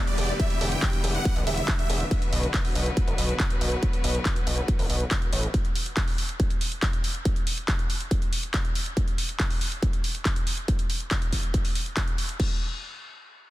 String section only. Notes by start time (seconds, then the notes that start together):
Already playing: D3 G3 B3 E4 G4
2.11 F#3 B3 F#4 B4